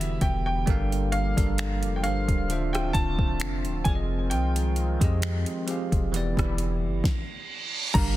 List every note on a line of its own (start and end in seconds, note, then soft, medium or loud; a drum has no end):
0.00 0.18 E1 loud
0.00 0.32 D3 medium
0.00 2.45 D3 medium
0.00 0.31 E3 medium
0.00 0.65 E3 medium
0.00 2.45 G3 medium
0.00 0.65 B3 medium
0.00 0.65 E4 medium
0.00 0.32 F#4 medium
0.00 0.33 G4 medium
0.00 0.23 E5 medium
0.00 0.33 E5 loud
0.00 closed hi-hat soft
0.21 0.65 E1 loud
0.21 0.44 G5 medium
0.21 kick medium
0.21 closed hi-hat medium
0.46 1.15 G5 medium
0.66 1.35 G1 loud
0.66 2.47 F3 medium
0.66 1.21 G3 loud
0.66 2.47 A#3 medium
0.66 1.21 D4 medium
0.66 6.09 F4 medium
0.66 1.22 A4 medium
0.66 1.22 A#4 medium
0.66 kick loud
0.66 closed hi-hat medium
0.70 1.23 F5 loud
0.92 closed hi-hat soft
1.12 1.99 F5 medium
1.12 closed hi-hat soft
1.36 1.84 G1 loud
1.36 1.89 G3 medium
1.36 1.90 D4 medium
1.36 1.90 A4 medium
1.36 1.91 A#4 medium
1.36 kick loud
1.36 closed hi-hat medium
1.40 1.92 F5 medium
1.58 finger snap loud
1.58 closed hi-hat medium
1.83 2.05 F1 medium
1.83 closed hi-hat soft
1.96 2.03 G5 medium
2.02 2.27 G1 medium
2.02 2.48 G3 medium
2.02 2.48 D4 medium
2.02 2.50 A4 medium
2.02 2.50 A#4 medium
2.02 2.76 F5 loud
2.02 closed hi-hat medium
2.07 2.50 C5 medium
2.28 2.92 D1 loud
2.28 kick medium
2.28 closed hi-hat soft
2.48 3.59 D3 medium
2.48 3.84 D3 medium
2.48 6.09 F3 medium
2.48 3.84 A3 medium
2.48 6.09 C4 medium
2.48 3.60 D4 medium
2.48 3.60 F4 medium
2.48 3.61 C5 medium
2.48 closed hi-hat medium
2.53 3.61 E5 medium
2.73 2.95 G5 medium
2.73 cross-stick loud
2.73 closed hi-hat medium
2.93 3.42 D1 loud
2.93 3.81 A5 loud
2.93 kick medium
2.93 closed hi-hat medium
3.19 kick loud
3.40 3.66 F1 medium
3.40 finger snap loud
3.40 closed hi-hat medium
3.65 3.85 D1 medium
3.65 closed hi-hat soft
3.84 4.33 F1 loud
3.84 6.10 D#3 medium
3.84 4.76 F3 medium
3.84 6.10 G#3 medium
3.84 4.76 C4 medium
3.84 4.77 F4 medium
3.84 4.78 G#4 medium
3.84 3.95 G#5 medium
3.84 kick loud
3.84 closed hi-hat medium
3.89 3.94 D5 medium
3.95 4.81 D#5 medium
4.30 4.98 C2 medium
4.30 7.45 G5 medium
4.30 closed hi-hat medium
4.56 closed hi-hat soft
4.76 closed hi-hat soft
5.00 5.45 F2 loud
5.00 5.53 F3 medium
5.00 5.54 C4 medium
5.00 5.54 G4 medium
5.00 5.55 G#4 medium
5.00 kick loud
5.00 closed hi-hat medium
5.04 5.55 D#5 medium
5.22 finger snap loud
5.22 closed hi-hat medium
5.46 closed hi-hat soft
5.66 6.12 F3 medium
5.66 6.13 C4 medium
5.66 6.13 G4 medium
5.66 6.14 G#4 medium
5.66 closed hi-hat medium
5.71 6.15 F5 medium
5.92 6.36 E1 medium
5.92 kick medium
5.92 closed hi-hat soft
6.12 7.03 D3 medium
6.12 6.87 E3 medium
6.12 7.03 E3 medium
6.12 7.03 G3 medium
6.12 7.03 B3 medium
6.12 6.87 B3 medium
6.12 7.03 E4 medium
6.12 6.88 E4 medium
6.12 6.88 G4 medium
6.12 closed hi-hat medium
6.12 reverse cymbal medium
6.16 6.89 D5 loud
6.37 6.85 E1 loud
6.37 kick loud
6.37 cross-stick loud
6.37 closed hi-hat soft
6.58 closed hi-hat medium
6.83 7.03 F#1 medium
7.04 kick loud
7.04 snare medium
7.94 8.17 G1 loud
7.94 8.17 D3 medium
7.94 8.17 G3 medium
7.94 8.17 A#3 medium
7.94 8.17 D4 medium
7.94 8.17 G4 medium
7.94 8.17 A#4 medium
7.94 8.17 A#5 loud
7.94 kick loud
7.94 closed hi-hat medium
7.94 crash loud
7.94 downlifter medium
7.98 8.17 F5 loud